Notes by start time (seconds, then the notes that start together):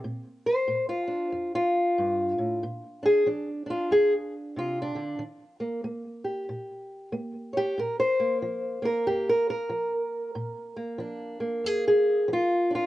0.04 A#2
0.46 C5
0.68 A#2
0.89 F4
1.08 D4
1.32 F2
1.55 F4
1.98 G2
2.38 A2
2.63 A#2
3.03 D4 G#4
3.26 F3 D4
3.66 D4
3.70 F4
3.91 F2 G#4
4.56 C3 F4
4.82 D4
4.95 D3
5.19 D#3
5.60 A#3
5.84 A#3
6.24 G4
6.49 A#2
7.12 A#3
7.53 C#5
7.57 G4
7.78 A#2 A#4
8.00 C5
8.20 A#3
8.42 F3
8.82 A#3 A#4
9.07 F2 G4
9.29 A#4
9.50 A#4
9.70 F3
10.35 A#2
10.76 A#3
10.98 F3 D4
11.40 A#3
11.64 F2 G#4
11.88 G#4
12.28 F3
12.33 F4
12.71 D4
12.75 F4